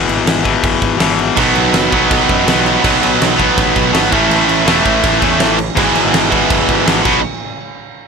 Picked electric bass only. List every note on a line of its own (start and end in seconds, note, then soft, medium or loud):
0.08 0.23 G#1 medium
0.26 0.55 G#1 loud
0.63 0.78 F#1 medium
0.82 0.96 G#1 medium
1.00 1.29 G#1 medium
1.37 1.52 B1 loud
1.55 1.70 B1 medium
1.73 1.88 F#1 loud
1.92 2.07 B1 medium
2.11 2.25 B1 loud
2.29 2.43 F#2 medium
2.48 2.76 B1 loud
2.85 2.99 B1 loud
3.02 3.16 B1 medium
3.21 3.49 B1 loud
3.58 3.72 A1 medium
3.76 3.90 B1 loud
3.94 4.08 G#1 loud
4.13 4.27 A1 loud
4.29 4.44 A1 loud
4.48 4.62 A1 medium
4.66 4.81 E1 loud
4.85 5.00 A1 medium
5.04 5.18 A1 medium
5.22 5.36 E2 loud
5.39 5.69 A1 loud
5.77 5.91 G#1 loud
5.96 6.10 G#1 loud
6.13 6.42 G#1 loud
6.50 6.65 F#1 medium
6.69 6.83 G#1 loud
6.86 7.01 G#1 loud
7.05 7.22 B1 loud